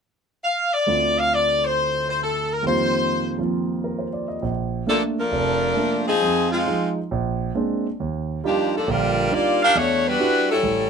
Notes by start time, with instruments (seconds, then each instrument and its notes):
0.44 saxophone section F5
0.73 saxophone section D5
0.87 grand piano D2 D3 A3 C4 F4
1.19 saxophone section F5
1.34 saxophone section D5
1.65 saxophone section C5
2.09 saxophone section C5
2.23 saxophone section A4
2.53 saxophone section A#4
2.63 grand piano F2 D#3 G3 A#3
2.67 grand piano F4, saxophone section C5
3.39 grand piano F3 A#3 C4 F4
3.84 grand piano A#4
3.98 grand piano C5
4.13 grand piano D5
4.28 grand piano D#5
4.42 grand piano A#1
4.86 saxophone section F3 A#3 D4 A4, grand piano A3 A#3 D4
5.19 saxophone section F3 D4 A4 A#4
5.32 grand piano F1
5.76 grand piano A3 A#3 D4
6.07 saxophone section F3 C4 D#4 G#4
6.22 grand piano F2 F3
6.52 saxophone section G#3 C4 D#4 F4
6.67 grand piano F3 G#3 D#4
7.11 grand piano A#1
7.55 grand piano G#3 A#3 C4 D4
8.00 grand piano D#2
8.44 saxophone section F3 A#3 D4 G4, grand piano G3 D4 D#4 F4
8.76 saxophone section F3 A#3 D4 A4
8.87 grand piano A#1 D3, saxophone section G3 D4 F4 A#4
9.31 grand piano G3 D4 D#4 F4, saxophone section A#3 F4 G4 D5
9.62 saxophone section D4 G4 A#4 F5
9.75 grand piano E2, saxophone section A3 D4 F#4 C#5
10.08 saxophone section G3 D4 F#4 B4
10.20 grand piano G3 D4 E4 F#4
10.51 saxophone section G3 C#4 E4 A4
10.63 grand piano A1